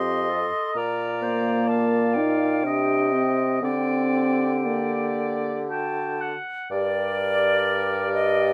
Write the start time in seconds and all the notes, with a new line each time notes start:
Already playing: F2 C4 G4 D#5 C6
0.30 A4
0.76 A#2 A#4 D5 A#5
1.22 A#3 C5
1.67 D5 F5 A5
2.14 D#4 G5
2.64 C3 D4 G4 D#5
3.13 C4
3.62 D3 C4 G4 D5 G5
4.64 A#3 D5
5.70 F#4 G5 A5
6.21 F#5
6.71 G2 G4 A#4 D5
8.13 D#5